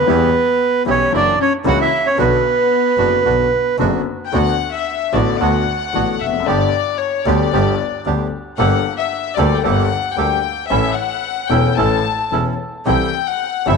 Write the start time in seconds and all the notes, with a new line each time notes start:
Already playing: B3 B4
0.01 D#2
0.07 E2 E3 G3 B3 E4 G4
0.86 B1 B2 E3 G3 B3 C#4 E4 G4
0.90 C#5
1.12 F#1 F#2 E3 F#3 A#3 C#4 D4 E4 F#4
1.16 D5
1.41 C#4 C#5
1.65 C#2 C#3 E3 A#3 C#4 E4 F#4 F#5
1.79 E4 E5
2.07 C#4 C#5
2.18 B1 B2 D3 F#3 B3 D4 F#4 B4
2.97 F#1 F#2 D3 F#3 B3 D4 F#4
3.24 B1 B2 D3 F#3 B3 D4 F#4
3.78 F#1 F#2 D3 F#3 B3 D4 F#4
4.26 G5
4.32 D2 D3 A3 B3 D4 F#4 F#5
4.74 E5
5.13 A1 A2 D3 A3 B3 D4 F#4 D5
5.40 D2 D3 A3 B3 D4 F#4 F#5
5.93 A1 A2 D3 A3 B3 D4 F#4
6.20 F1 E5
6.26 E2
6.33 F2
6.40 F#2
6.46 G1 G2 D3 G3 B3 D4 G4 D5
7.00 C#5
7.25 D2 D3 G3 B3 D4 G4 D5
7.52 G1 G2 D3 G3 B3 D4 G4
8.06 D2 D3 G3 B3 D4 G4
8.58 G1 G2 G3 A#3 D4 G4 A4 F#5
8.97 E5
9.36 D2 D3 G3 A#3 D4 G4 A4 D5
9.57 G5
9.62 G1 G2 G3 A#3 D4 G4 A4 F#5
10.15 D2 D3 G3 A#3 D4 G4 A4 G5
10.68 A1 A2 E3 A3 C#4 E4 A4 E5
10.95 F#5
11.49 E1 E2 E3 A3 C#4 E4 A4 G5
11.76 A1 A2 E3 A3 C#4 E4 A4 A5
12.31 E1 E2 E3 A3 C#4 E4 A4
12.86 C2 C3 E3 A3 C4 E4 G4 A4 G5
13.27 F#5
13.67 G1 G2 E3 A3 C4 E4 G4 A4 E5